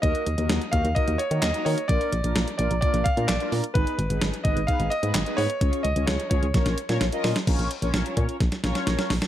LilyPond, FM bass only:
\new Staff \with { instrumentName = "FM bass" } { \clef bass \time 4/4 \key bes \phrygian \tempo 4 = 129 ees,16 r16 ees,16 ees,16 ees,16 r16 ees,16 ees,16 r16 ees,16 r16 ees16 ees,16 r16 ees16 r16 | bes,,16 r16 bes,,16 bes,,16 bes,,16 r16 bes,,16 bes,,16 r16 bes,,16 r16 bes,16 bes,,16 r16 bes,16 r16 | aes,,16 r16 aes,,16 aes,,16 aes,,16 r16 aes,,16 aes,,16 r16 aes,,16 r16 aes,16 aes,,16 r16 aes,16 r16 | des,16 r16 des,16 des,16 des,16 r16 des,16 des,16 bes,,16 bes,,16 r16 bes,16 bes,,16 r16 bes,16 r16 |
bes,,16 bes,,16 r16 bes,,16 bes,,16 r16 bes,16 r16 bes,,16 r16 bes,,16 r16 bes,,16 r16 bes,,16 r16 | }